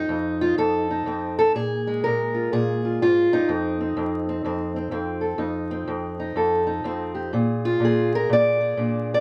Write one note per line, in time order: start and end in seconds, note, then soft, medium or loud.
0.00 0.89 D#4 medium
0.09 0.56 F2 medium
0.41 0.58 F4 medium
0.58 1.05 F2 medium
0.58 1.37 A4 loud
0.91 1.54 D#4 soft
1.06 1.54 F2 medium
1.06 1.53 C4 medium
1.39 1.55 A4 loud
1.55 2.03 A#2 medium
1.55 2.03 G#4 loud
1.87 3.49 G#3 soft
2.04 2.51 A#2 medium
2.04 2.52 A#4 medium
2.34 2.84 F4 soft
2.52 3.00 A#2 medium
2.52 3.00 G#4 loud
2.85 3.02 F4 soft
3.02 3.32 G#2 medium
3.02 3.49 F4 medium
3.32 3.48 G2 medium
3.32 5.37 D#4 medium
3.48 3.96 F2 medium
3.48 3.80 C4 soft
3.80 4.28 C4 soft
3.97 4.44 F2 medium
4.29 4.45 C4 medium
4.44 4.90 F2 medium
4.44 4.75 C4 medium
4.76 4.90 C4 soft
4.91 5.37 F2 medium
4.91 5.38 C4 medium
5.21 5.38 A4 soft
5.38 5.86 F2 medium
5.38 6.18 D#4 medium
5.71 6.84 C4 medium
5.87 6.34 F2 medium
6.20 6.66 D#4 medium
6.36 6.83 F2 medium
6.36 7.14 A4 medium
6.67 7.31 D#4 medium
6.84 7.33 F2 medium
6.84 7.31 C4 medium
7.15 7.31 G4 soft
7.33 7.79 A#2 medium
7.33 7.83 G#4 soft
7.65 8.13 F4 medium
7.80 8.29 A#2 medium
7.85 8.59 G#4 medium
8.15 8.31 A#4 loud
8.29 8.76 A#2 medium
8.29 9.10 D5 loud
8.61 9.20 G#4 medium
8.77 9.20 A#2 medium
8.77 9.20 D4 soft
9.14 9.20 D5 loud